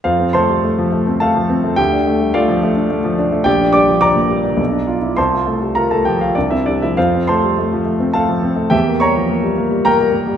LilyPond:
<<
  \new Staff \with { instrumentName = "Grand piano" } { \time 3/4 \key f \major \tempo 4 = 105 <f' c'' f''>8 <c'' a'' c'''>4. <a' f'' a''>4 | <g' g''>4 <f' d'' f''>2 | <g' d'' g''>8 <d'' d'''>8 <d'' bes'' d'''>2 | <c'' a'' c'''>4 <bes' bes''>16 <a' a''>16 <g' g''>16 <f' f''>16 <d' d''>16 <e' e''>16 <d' d''>16 <e' e''>16 |
<f' c'' f''>8 <c'' a'' c'''>4. <a' f'' a''>4 | <g' e'' g''>8 <cis'' bes'' cis'''>4. <bes' g'' bes''>4 | }
  \new Staff \with { instrumentName = "Grand piano" } { \time 3/4 \key f \major f,16 c'16 a16 g16 a16 f16 a16 c'16 a16 f16 c'16 a16 | d,16 d'16 a16 g16 a16 f16 a16 d'16 a16 f16 d'16 a16 | bes,,16 d'16 g16 f16 g16 bes,16 g16 d'16 b,,16 d'16 f'16 e'16 | c,16 f'16 a16 g16 f'16 a16 f8 c,16 c'16 g16 f16 |
f,16 c'16 a16 g16 a16 f16 a16 c'16 a16 f16 c'16 a16 | e,16 bes16 g16 f16 bes16 g16 bes16 g16 bes16 g16 bes16 g16 | }
>>